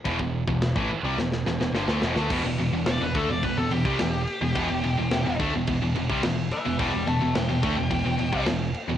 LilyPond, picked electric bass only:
\new Staff \with { instrumentName = "Picked electric bass" } { \clef bass \time 4/4 \key e \minor \tempo 4 = 107 e,,16 e,,8 e,,8 a,,16 r16 c,16 e,,8 e,,16 e,,16 g,,16 d,16 e,,16 d,16 | e,,16 e,,16 e,,16 e,,16 e,,16 e,,16 d,16 e,,16 e,,16 e,,16 e,,16 c,16 e,,8 r16 e,,16 | e,,16 e,,16 e,,16 e,,16 e,,16 e,,16 d,16 e,,16 e,,16 e,,16 e,,16 c,16 e,,8 r16 e,,16 | e,,16 e,,16 e,,16 e,,16 e,,16 e,,16 d,16 e,,16 e,,16 e,,16 e,,16 c,16 e,,8 r16 e,,16 | }